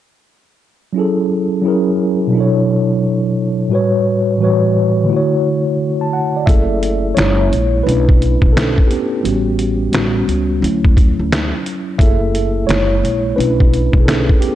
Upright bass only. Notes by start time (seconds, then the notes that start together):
6.48 F#1
7.17 F#1
7.52 A#1
7.87 B1
8.42 B1
9.24 A1
9.94 A1
10.28 C#2
10.62 D2
11.19 D2
11.99 F#1
12.69 F#1
13.03 A#1
13.38 B1
13.94 B1